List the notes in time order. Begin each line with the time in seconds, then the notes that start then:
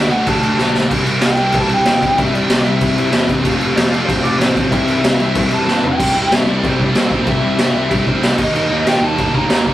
Already playing: D3 F#3 A3 D4 E5
0.09 D2 D3 A3 D4 F#4 F#5, crash
0.27 D2 A5, kick, crash
0.42 D2, crash
0.58 B1 D3 A3 D4, snare
0.75 snare
0.89 C2 C3 E3 G3 C4 E4, kick, crash
0.93 G4
1.05 C2, crash
1.21 C2, snare, crash
1.27 G5
1.36 C3 E3 G3 C4 G4, crash
1.52 C2, kick, crash
1.58 A5
1.69 C2, crash
1.74 G5
1.85 E2 C3 G3 C4, snare, crash
2.02 kick, crash
2.16 C2 C3 E3 G3 C4 G4 E5, kick, crash
2.20 E4
2.33 C2 D5, crash
2.50 C2, snare, crash
2.64 C2 C3 E3 G3 C4 G4 E5, crash
2.81 C2, kick, crash
2.97 C2, crash
3.11 E2 C3 G3 C4, snare, crash
3.29 kick, crash
3.43 F1 F2 C3 F3 A3 C4 F4, kick, crash
3.60 F1, crash
3.75 F1 D5, snare, crash
3.91 F2 C3 F3 A3 C4 F4, crash
3.95 F3
4.06 F1 C5, kick, crash
4.23 F1 D5, crash
4.38 A1 F2 C3 F3 C5, snare, crash
4.56 kick, crash
4.71 C2 C3 E3 G3 C4 E4 E5, kick, crash
4.87 C2, crash
5.04 C2, snare, crash
5.19 C2 C3 E3 G3 C4 E4, crash
5.35 C2, kick, crash
5.51 C2 A5, crash
5.67 G2 C3 G3 C4, snare
5.83 G5, floor tom
5.98 C2 C3 G3 C4 E4, kick, crash
6.15 C2 C3 G3 C4 E4
6.30 G2 C3 G3 C4 E4 E5, snare, crash
6.46 C2 C3 G3 C4 E4
6.51 D5
6.61 C2 C3 G3 C4 E4, kick, crash
6.68 C5
6.78 C2 C3 G3 C4 E4, kick
6.83 D5
6.92 C2 C3 G3 C4 E4, snare, crash
6.98 C5
7.09 A#2 C3 G3 C4 E4, kick
7.25 C2 C3 G3 C4 E4, kick, crash
7.30 E5
7.40 C2 C3 G3 C4 E4
7.57 G2 C3 G3 C4 E4, snare, crash
7.72 C2 C3 G3 C4 E4
7.88 C2 C3 G3 C4 E4, kick, crash
8.05 C2 C3 G3 C4 E4 C5, kick
8.20 C2 C3 G3 C4 E4, snare, crash
8.37 D#2 D#3 G3 A#3 D#4 D#5, kick, crash
8.52 D#2 D#3 G3 A#3 D#4, crash
8.69 D#2 D#3 G3 A#3 D#4
8.84 A#2 D#3 G3 A#3 D#4, snare, crash
8.88 G5
9.00 D#2 D#3 G3 A#3 D#4 A5
9.16 D#2 D#3 G3 A#3 D#4, kick, crash
9.33 D#2 D#3 G3 A#3 D#4 A#5, kick
9.49 D#2 D#3 G3 A#3 D#4, snare, crash
9.66 C3 D#3 G3 A#3 D#4 A#5, kick